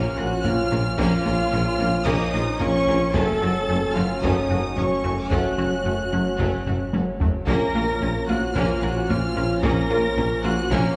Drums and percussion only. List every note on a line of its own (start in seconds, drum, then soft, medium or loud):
0.44 taiko low-mid medium
0.98 taiko loud
2.06 taiko loud
2.60 taiko low-mid medium
3.14 taiko loud
4.23 taiko medium
4.77 taiko low-mid medium
5.04 taiko rim soft
5.31 taiko loud
5.59 taiko rim soft
6.39 taiko medium
6.67 taiko low-mid medium
6.93 taiko high medium
7.20 taiko low loud
7.47 taiko loud
8.55 taiko medium
9.09 taiko low-mid medium
9.63 taiko loud
10.44 taiko rim soft
10.71 taiko loud